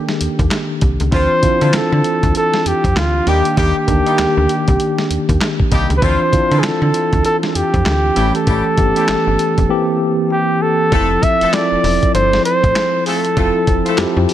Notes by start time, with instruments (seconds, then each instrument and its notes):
Already playing: tine electric piano D#3 A#3 D4 G4 A4, muted trumpet G4
0.09 snare
0.21 fm bass D#2, closed hi-hat
0.39 fm bass D#2, kick, closed hi-hat
0.51 snare, clap, closed hi-hat
0.81 fm bass C2, kick, closed hi-hat
1.00 fm bass C#2, closed hi-hat
1.12 fm bass D2, tine electric piano E3 C4 D4 F4, horn section F3 C4 D4 E4 F4, muted trumpet C5, kick, closed hi-hat
1.42 fm bass D3, tine electric piano C4 D4 E4 F4, kick, closed hi-hat
1.61 fm bass D3, horn section F3 C4 D4 E4 F4, closed hi-hat
1.73 fm bass D3, muted trumpet A4, snare, clap, closed hi-hat
1.92 fm bass D3
2.04 closed hi-hat
2.23 fm bass D2, kick, closed hi-hat
2.35 muted trumpet A4, closed hi-hat
2.54 snare
2.66 fm bass F2, muted trumpet G4, closed hi-hat
2.84 fm bass F2, kick, closed hi-hat
2.96 fm bass D2, muted trumpet F4, snare, clap, closed hi-hat
3.26 fm bass D#2, tine electric piano D#3 A#3 D4 G4, horn section G3 A#3 D4 D#4 G4, muted trumpet G4, closed hi-hat
3.45 closed hi-hat
3.57 fm bass D#2, horn section G3 A#3 D4 D#4 G4, muted trumpet G4, kick, closed hi-hat
3.87 fm bass D2, tine electric piano D#3 A#3 D4 G4, kick, closed hi-hat
4.06 horn section G3 A#3 D4 D#4 G4, closed hi-hat
4.18 fm bass D2, snare, clap, closed hi-hat
4.37 fm bass D2
4.49 closed hi-hat
4.68 fm bass C2, kick, closed hi-hat
4.80 closed hi-hat
4.98 snare
5.10 fm bass D#2, closed hi-hat
5.29 fm bass D#2, kick, closed hi-hat
5.41 snare, clap, closed hi-hat
5.60 kick
5.71 fm bass C2, horn section G3 A#3 D4 D#4 G4, kick, closed hi-hat
5.90 fm bass C#2, closed hi-hat
5.98 tine electric piano E3, muted trumpet B4
6.02 fm bass D2, horn section F3 C4 D4 E4 F4, tine electric piano C4 D4 F4, muted trumpet C5, kick, closed hi-hat
6.32 fm bass D3, tine electric piano C4 D4 E4 F4, kick, closed hi-hat
6.51 fm bass D3, horn section F3 C4 D4 E4 F4, closed hi-hat
6.59 muted trumpet G#4
6.63 fm bass D3, muted trumpet A4, snare, clap, closed hi-hat
6.82 fm bass D3
6.94 closed hi-hat
7.13 fm bass D2, kick, closed hi-hat
7.25 muted trumpet A4, closed hi-hat
7.43 snare
7.50 muted trumpet A4
7.55 fm bass F2, muted trumpet G4, closed hi-hat
7.74 fm bass F2, kick, closed hi-hat
7.86 fm bass D2, snare, clap, closed hi-hat
8.16 fm bass A1, tine electric piano E3 A3 C#4 G4, horn section G3 A3 C#4 E4 G4, closed hi-hat
8.35 muted trumpet A4, closed hi-hat
8.47 fm bass A1, horn section G3 A3 C#4 E4 G4, kick, closed hi-hat
8.77 fm bass G1, tine electric piano E3 A3 B3 G4, kick, closed hi-hat
8.85 tine electric piano C#4
8.96 horn section G3 A3 C#4 E4 G4, closed hi-hat
9.08 fm bass G1, snare, clap, closed hi-hat
9.27 fm bass G1
9.39 closed hi-hat
9.58 fm bass F1, kick, closed hi-hat
9.69 tine electric piano E3 A#3 C4 G4
10.32 muted trumpet G4
10.62 muted trumpet A4
10.92 fm bass F1, tine electric piano F3 C4 E4 A4, horn section A3 C4 E4 F4 A4, kick, closed hi-hat
11.23 muted trumpet E5, kick, closed hi-hat
11.41 fm bass E1, horn section A3 C4 E4 F4 A4, closed hi-hat
11.53 tine electric piano F3 C4 E4 A4, muted trumpet D5, snare, clap, closed hi-hat
11.72 fm bass E1
11.84 fm bass E1, open hi-hat
12.03 kick, closed hi-hat
12.14 fm bass G1, muted trumpet C5, closed hi-hat
12.33 snare
12.45 muted trumpet C5, closed hi-hat
12.64 fm bass A1, kick, closed hi-hat
12.76 snare, clap, closed hi-hat
13.06 horn section A3 C4 E4 F4 A4, muted trumpet A4, open hi-hat
13.25 closed hi-hat
13.36 fm bass F1, tine electric piano F3 C4 E4 A4, horn section A3 C4 E4 F4 A4, kick, closed hi-hat
13.67 fm bass F1, kick, closed hi-hat
13.86 horn section A3 C4 E4 F4 A4, closed hi-hat
13.97 fm bass F2, tine electric piano F3 C4 E4 G4, snare, clap, closed hi-hat
14.16 fm bass F2
14.29 open hi-hat